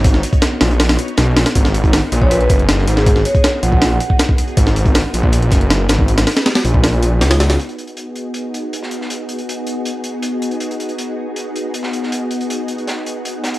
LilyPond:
<<
  \new Staff \with { instrumentName = "Vibraphone" } { \time 4/4 \key gis \minor \tempo 4 = 159 r1 | r4. r16 cis''16 b'8 r4 r16 gis'16~ | gis'16 r16 cis''8 r8 fis''4. r4 | r1 |
r1 | r1 | r1 | r1 |
r1 | }
  \new Staff \with { instrumentName = "String machine" } { \time 4/4 \key gis \minor << { cis''1 | gis'1~ | gis'1 | b'1~ |
b'1 | gis'1~ | gis'1~ | gis'1~ |
gis'1 | } \\ { <b dis' fis'>1~ | <b dis' fis'>1~ | <b dis' fis'>1~ | <b dis' fis'>1~ |
<b dis' fis'>1 | <b dis' fis'>1~ | <b dis' fis'>1~ | <b dis' fis'>1~ |
<b dis' fis'>1 | } >> }
  \new Staff \with { instrumentName = "Detuned saw bass" } { \clef bass \time 4/4 \key gis \minor gis,,8 r4 ais,,4 r8 b,,8 ais,,8 | gis,,4 r8 ais,,4 fis,,4 gis,,8~ | gis,,8 r4 ais,,4 r4. | gis,,4 r8 ais,,4 fis,,4 gis,,8~ |
gis,,8 r4 ais,,4. cis,4 | r1 | r1 | r1 |
r1 | }
  \new DrumStaff \with { instrumentName = "Drums" } \drummode { \time 4/4 <hh hho bd>16 sn16 <hh hho>16 <hh bd>16 <hh hho sn>8 <hh hho sn>16 hh16 <hh hho sn>16 <hho sn>16 <hh hho>16 hh16 <hh hho sn>8 <hh hho sn>16 <hh hho sn>16 | <hh hho bd>16 <hh sn>16 <hh hho>16 <hh bd>16 <hh hho sn>8 <hh hho>16 bd16 <hh hho>16 hh16 <hh hho bd>16 hh16 <hh hho sn>16 sn16 <hh hho>16 sn16 | <hh hho bd>16 sn16 <hh hho>16 <hh bd>16 <hh hho sn>8 <hh hho>16 bd16 <hh hho sn>8 <hh hho>16 bd16 <hh hho sn>16 bd16 <hh hho>16 hh16 | <hh hho bd>16 <hh sn>16 <hh hho>16 <hh bd>16 <hh hho sn>8 <hh hho>16 bd16 <hh hho>16 hh16 <hh hho bd sn>16 hh16 <hh hho sn>8 <hh hho sn>16 bd16 |
<hh hho>16 <hho sn>16 <hh hho sn>16 <hh hho sn>16 <hh hho sn>16 <hh hho sn>16 <hh hho>16 bd16 <hh hho sn>16 hh16 <hh hho>8 <hh hho sn>16 <hho sn>16 <hh hho sn>16 <hh hho sn>16 | hh16 hh16 hh16 hh16 hh8 hh8 hh8 hh8 hh16 sn16 hh16 sn16 | hh8 hh16 hh16 hh8 hh8 hh8 hh8 hh8 hh16 hh16 | hh16 hh16 hh16 hh16 hh4 hh8 hh8 hh16 sn16 hh16 sn16 |
hh8 hh16 hh16 hh8 hh16 hh16 <hh sn>8 hh8 hh8 <hh sn>16 hh16 | }
>>